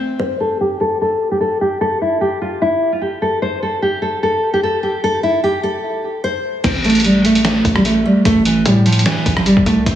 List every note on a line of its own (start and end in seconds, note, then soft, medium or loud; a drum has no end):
0.00 0.17 C4 medium
0.19 0.36 C5 loud
0.40 0.57 A4 medium
0.61 0.77 G4 medium
0.81 0.97 A4 medium
1.02 1.30 A4 medium
1.31 1.39 G4 medium
1.41 1.57 A4 medium
1.61 1.77 G4 medium
1.81 1.97 A4 loud
2.02 2.18 E4 medium
2.21 2.37 G4 medium
2.42 2.58 F4 medium
2.62 2.91 E4 medium
2.92 3.00 F4 medium
3.02 3.18 G4 medium
3.22 3.38 A4 medium
3.42 3.58 C5 medium
3.63 3.79 A4 medium
3.82 3.99 G4 medium
4.02 4.18 A4 medium
4.23 4.52 A4 medium
4.54 4.61 G4 medium
4.63 4.79 A4 medium
4.83 4.99 G4 medium
5.04 5.20 A4 loud
5.23 5.39 E4 medium
5.44 5.60 G4 medium
5.63 6.20 A4 medium
6.24 6.62 C5 medium
6.64 7.61 A1 loud
6.64 6.80 C4 loud
6.64 kick loud
6.64 closed hi-hat medium
6.64 crash loud
6.84 7.01 A3 medium
6.84 closed hi-hat soft
6.90 closed hi-hat medium
6.95 closed hi-hat medium
7.00 closed hi-hat medium
7.04 7.21 G3 medium
7.04 closed hi-hat medium
7.25 7.41 A3 medium
7.25 closed hi-hat medium
7.35 closed hi-hat medium
7.45 7.74 A3 medium
7.45 snare loud
7.45 closed hi-hat medium
7.65 8.04 A1 loud
7.65 kick loud
7.65 closed hi-hat medium
7.76 7.83 G3 medium
7.76 cross-stick loud
7.85 8.01 A3 medium
7.85 closed hi-hat medium
8.05 8.22 G3 medium
8.25 8.64 A1 loud
8.25 8.42 A3 loud
8.25 kick loud
8.25 closed hi-hat medium
8.45 8.62 E3 medium
8.45 closed hi-hat medium
8.65 9.04 A2 loud
8.65 8.82 G3 medium
8.65 closed hi-hat medium
8.86 9.02 F3 medium
8.86 closed hi-hat soft
8.92 closed hi-hat medium
8.99 closed hi-hat medium
9.06 9.35 E3 medium
9.06 snare loud
9.06 closed hi-hat medium
9.26 9.56 A1 loud
9.26 kick loud
9.26 closed hi-hat medium
9.37 9.44 F3 medium
9.37 cross-stick loud
9.46 9.62 G3 medium
9.46 closed hi-hat medium
9.57 9.66 G1 loud
9.57 kick loud
9.66 9.86 C2 loud
9.66 9.82 A3 medium
9.66 kick medium
9.66 closed hi-hat medium
9.86 9.95 A1 loud
9.86 9.95 C4 loud
9.86 kick loud
9.86 closed hi-hat medium